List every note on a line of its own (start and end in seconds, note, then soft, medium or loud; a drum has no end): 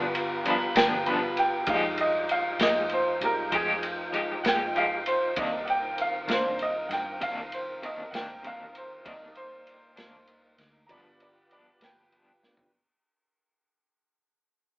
0.00 0.72 G1 medium
0.00 1.64 B3 medium
0.00 1.64 F4 medium
0.00 1.65 F4 medium
0.00 1.65 G4 medium
0.00 1.64 B4 medium
0.15 ride medium
0.44 0.63 G2 medium
0.44 0.64 F3 medium
0.44 0.64 B3 medium
0.44 0.64 D4 medium
0.44 ride medium
0.48 0.77 B5 medium
0.75 1.64 G1 medium
0.75 0.95 F3 soft
0.75 0.95 B3 soft
0.75 0.94 D4 medium
0.75 1.06 G5 medium
0.75 snare loud
0.75 ride medium
1.06 1.25 G2 medium
1.06 1.25 F3 medium
1.06 1.26 B3 medium
1.06 1.26 D4 medium
1.06 1.37 B5 medium
1.06 ride medium
1.37 1.68 G5 medium
1.37 ride medium
1.67 2.56 F1 loud
1.67 1.86 F3 medium
1.67 5.33 F3 medium
1.67 2.56 G3 soft
1.67 2.56 G#3 soft
1.67 1.87 G#3 medium
1.67 2.56 D#4 medium
1.67 5.33 D#4 medium
1.67 1.87 D#4 medium
1.67 5.33 F4 medium
1.67 10.69 F4 medium
1.67 1.87 G4 medium
1.67 1.99 F5 medium
1.67 5.33 G5 medium
1.67 kick loud
1.67 ride loud
1.98 2.30 D#5 medium
1.98 ride medium
2.29 2.60 F5 medium
2.29 ride medium
2.59 3.17 F1 loud
2.59 2.80 G#3 medium
2.59 2.79 D#4 medium
2.59 2.79 G4 medium
2.59 2.91 D#5 medium
2.59 snare loud
2.59 ride medium
2.89 ride medium
2.94 3.22 C5 medium
3.21 3.50 C2 medium
3.21 3.50 G3 soft
3.21 3.50 G#3 soft
3.21 3.50 D#4 soft
3.21 3.53 A#4 medium
3.21 ride medium
3.52 4.41 F1 loud
3.52 3.71 F3 medium
3.52 3.71 G#3 medium
3.52 3.71 D#4 medium
3.52 3.72 G4 loud
3.52 3.84 G#4 loud
3.52 kick medium
3.52 ride medium
3.83 ride medium
4.13 4.32 F3 medium
4.13 4.32 G#3 medium
4.13 4.32 D#4 medium
4.13 4.33 G4 medium
4.13 ride medium
4.44 5.33 F1 medium
4.44 4.64 G#3 soft
4.44 4.63 D#4 soft
4.44 4.63 G4 medium
4.44 4.47 F#5 medium
4.44 snare loud
4.44 ride medium
4.48 4.76 G5 medium
4.75 4.94 F3 medium
4.75 4.94 G#3 medium
4.75 4.95 D#4 medium
4.75 4.95 G4 medium
4.75 5.06 F5 medium
4.75 ride medium
5.06 5.37 C5 medium
5.06 ride medium
5.35 6.25 C2 loud
5.35 5.55 C3 medium
5.35 5.55 D#3 medium
5.35 5.78 D#3 soft
5.35 9.02 D#3 medium
5.35 5.55 A#3 medium
5.35 5.78 A#3 soft
5.35 10.69 C4 medium
5.35 5.56 D4 loud
5.35 10.69 A#4 medium
5.35 9.03 A#4 medium
5.35 5.78 D5 medium
5.35 kick loud
5.35 ride medium
5.39 9.03 C4 medium
5.39 5.68 D#5 medium
5.65 5.69 F#5 medium
5.65 ride medium
5.70 5.99 G5 medium
5.98 6.30 F5 medium
5.98 ride medium
6.28 6.86 C2 loud
6.28 6.47 D#3 soft
6.28 6.57 D#3 soft
6.28 6.47 A#3 medium
6.28 6.58 A#3 soft
6.28 6.47 D4 medium
6.28 6.58 D4 soft
6.28 snare loud
6.28 ride medium
6.33 6.61 C5 medium
6.59 6.91 D#5 medium
6.59 ride medium
6.89 7.18 G2 medium
6.89 6.92 F#5 medium
6.89 snare soft
6.89 ride medium
6.93 7.22 G5 medium
7.21 8.09 C2 loud
7.21 7.39 C3 medium
7.21 7.40 D#3 medium
7.21 7.40 A#3 medium
7.21 7.40 D4 medium
7.21 7.52 F5 loud
7.21 kick medium
7.21 ride medium
7.52 7.83 C5 medium
7.52 ride medium
7.82 8.01 C3 medium
7.82 8.01 D#3 medium
7.82 8.01 A#3 medium
7.82 8.02 D4 medium
7.82 8.14 D#5 medium
7.82 ride medium
8.11 9.01 C2 loud
8.11 8.32 A#3 medium
8.11 8.31 D4 medium
8.11 8.14 F#5 medium
8.11 snare loud
8.11 ride loud
8.15 8.33 D#3 soft
8.15 8.44 G5 medium
8.43 8.62 C3 medium
8.43 8.63 D#3 medium
8.43 8.63 A#3 medium
8.43 8.63 D4 medium
8.43 8.75 F5 medium
8.43 ride medium
8.75 9.06 C5 medium
8.75 ride medium
9.04 9.93 C2 loud
9.04 9.24 C3 medium
9.04 9.24 D#3 medium
9.04 10.87 A#3 medium
9.04 10.86 A#3 soft
9.04 9.24 A#3 loud
9.04 9.24 D4 medium
9.04 10.87 D#4 medium
9.04 10.85 D#4 soft
9.04 10.86 D5 soft
9.04 9.36 D#5 medium
9.04 kick loud
9.04 ride medium
9.35 10.56 C5 loud
9.35 ride medium
9.67 ride medium
9.96 10.55 C2 loud
9.96 10.16 D#3 soft
9.96 10.16 A#3 medium
9.96 10.15 D4 medium
9.96 snare loud
9.96 ride medium
10.27 ride medium
10.58 10.87 D2 medium
10.58 snare soft
10.58 ride medium
10.86 11.77 G1 loud
10.86 11.07 G2 medium
10.86 11.07 F3 loud
10.86 11.77 F3 medium
10.86 12.70 B3 medium
10.86 11.08 B3 medium
10.86 11.77 B3 soft
10.86 11.08 D4 medium
10.86 11.78 D4 medium
10.86 12.71 F4 medium
10.86 12.70 G4 medium
10.86 12.71 G4 medium
10.86 12.71 B4 medium
10.86 10.90 A#5 medium
10.86 kick medium
10.86 ride medium
10.91 11.19 D5 medium
10.91 11.20 B5 loud
11.20 11.50 D5 medium
11.20 11.51 B5 medium
11.20 ride medium
11.50 11.69 G2 medium
11.50 11.69 F3 medium
11.50 11.70 B3 medium
11.50 11.70 D4 medium
11.50 11.80 D5 medium
11.50 11.82 B5 medium
11.50 ride medium
11.80 12.69 G1 medium
11.80 12.01 F3 soft
11.80 12.00 B3 soft
11.80 12.00 D4 medium
11.80 12.71 B4 medium
11.80 12.72 G5 loud
11.80 snare loud
11.80 ride loud
12.12 12.30 G2 medium
12.12 12.31 F3 medium
12.12 12.31 B3 medium
12.12 12.32 D4 medium
12.12 ride medium
12.42 12.70 F3 soft
12.42 12.70 B3 soft
12.42 12.71 D4 medium
12.42 snare medium
12.57 floor tom loud